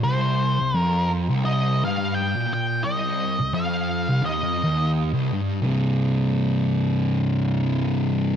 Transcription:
0.04 0.59 C2 loud
0.04 0.79 C5 loud
0.60 0.74 C2 medium
0.74 1.29 F2 medium
0.79 1.11 A#4 loud
1.29 1.83 C2 loud
1.45 1.84 D#5 medium
1.85 2.33 G2 loud
1.85 2.15 F5 loud
2.15 2.52 G5 loud
2.36 2.84 A#2 loud
2.54 2.84 G5 medium
2.84 3.38 C2 loud
2.84 3.54 D#5 loud
3.39 3.53 C2 medium
3.54 4.08 F2 loud
3.54 4.25 F5 loud
4.09 4.23 C2 loud
4.23 4.42 D#2 loud
4.23 4.90 D#5 medium
4.43 4.62 F2 loud
4.64 5.12 D#2 loud
5.14 5.32 C2 loud
5.33 5.61 G2 loud
5.62 8.36 C2 medium
5.62 8.36 G2 medium
5.66 8.36 C3 loud

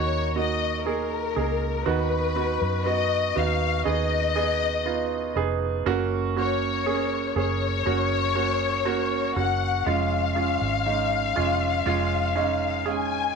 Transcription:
0.00 1.32 D#2 medium
0.00 0.35 A#3 medium
0.00 0.36 D#4 medium
0.00 0.36 F#4 medium
0.00 0.34 C#5 medium
0.35 0.83 A#3 soft
0.35 0.83 D#4 soft
0.35 0.84 F#4 soft
0.35 0.84 D#5 medium
0.85 1.33 A#3 soft
0.85 1.34 D#4 soft
0.85 1.34 G#4 medium
0.85 1.87 A#4 medium
1.36 1.83 C#2 medium
1.36 1.84 A#3 soft
1.36 1.84 D#4 soft
1.36 1.84 G#4 soft
1.85 2.57 D#2 medium
1.85 3.32 D#3 soft
1.85 2.33 B3 medium
1.85 2.34 D#4 medium
1.85 2.34 F#4 medium
1.85 2.87 B4 medium
2.36 2.84 B3 soft
2.36 2.84 D#4 soft
2.36 2.84 F#4 medium
2.62 3.32 F#2 medium
2.85 3.33 B3 soft
2.85 3.33 D#4 soft
2.85 3.34 F#4 medium
2.85 3.37 D#5 medium
3.36 3.83 D#2 medium
3.36 3.83 B3 soft
3.36 3.84 D#4 soft
3.36 3.84 F#4 medium
3.36 3.87 F5 medium
3.85 5.32 D#2 medium
3.85 4.33 B3 medium
3.85 4.33 D#4 medium
3.85 4.33 G#4 medium
3.85 5.33 D#5 medium
4.35 4.83 B3 medium
4.35 4.83 D#4 soft
4.35 4.84 G#4 medium
4.85 5.33 B3 soft
4.85 5.34 D#4 soft
4.85 5.34 F4 soft
5.36 5.83 F1 medium
5.36 5.83 B3 medium
5.36 5.84 D#4 soft
5.36 5.84 G#4 medium
5.86 7.32 F#1 medium
5.86 6.34 A#3 medium
5.86 6.34 C#4 medium
5.86 6.34 F#4 medium
6.36 6.84 A#3 medium
6.36 6.84 C#4 soft
6.36 6.84 F#4 medium
6.36 7.33 C#5 medium
6.86 7.34 A#3 medium
6.86 7.34 C#4 soft
6.86 7.34 G#4 medium
7.35 7.83 F#1 medium
7.35 7.83 A#3 medium
7.35 7.84 C#4 soft
7.35 7.84 G#4 medium
7.35 9.33 C#5 medium
7.86 9.32 F#1 medium
7.86 8.33 A#3 medium
7.86 8.34 C#4 medium
7.86 8.34 F#4 medium
8.35 8.83 A#3 soft
8.35 8.83 C#4 soft
8.35 8.83 F#4 medium
8.85 9.33 A#3 medium
8.85 9.33 C#4 medium
8.85 9.33 F#4 medium
9.36 9.83 F#1 medium
9.36 9.84 A#3 soft
9.36 9.84 C#4 soft
9.36 9.84 F#4 medium
9.36 9.87 F#5 medium
9.86 10.57 F1 medium
9.86 10.34 G#3 medium
9.86 10.34 C#4 medium
9.86 10.34 F4 medium
9.86 12.87 F5 medium
10.35 10.83 G#3 soft
10.35 10.83 C#4 soft
10.35 10.84 F4 medium
10.61 11.32 G#1 medium
10.86 11.34 G#3 soft
10.86 11.34 C#4 soft
10.86 11.34 D#4 medium
11.36 11.83 F1 medium
11.36 11.83 G#3 medium
11.36 11.84 C#4 medium
11.36 11.84 F4 medium
11.86 13.32 F1 medium
11.86 12.33 G#3 medium
11.86 12.34 C#4 medium
11.86 12.34 F4 medium
12.35 12.83 G#3 medium
12.35 12.83 C#4 medium
12.35 12.84 D#4 medium
12.85 13.33 G#3 soft
12.85 13.33 C#4 soft
12.85 13.33 G#4 medium
12.85 13.35 G#5 medium

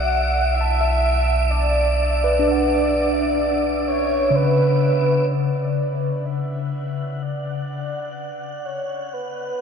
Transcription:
0.00 5.26 B1 medium
0.00 5.34 E5 medium
0.00 0.56 F#5 loud
0.00 5.34 D7 medium
0.54 1.52 E5 loud
0.61 2.71 A5 soft
0.81 2.43 E5 medium
1.51 3.88 D5 loud
2.24 5.75 B4 medium
2.39 4.49 D4 medium
2.51 5.50 F#5 soft
3.88 4.37 C#5 loud
4.30 7.82 C#3 soft
4.35 5.32 B4 loud
5.30 6.27 D5 loud
5.30 9.61 F#5 medium
5.30 9.61 F#6 medium
6.26 7.24 E5 loud
7.22 8.67 D5 loud
8.65 9.15 C#5 medium
9.13 9.61 B4 loud

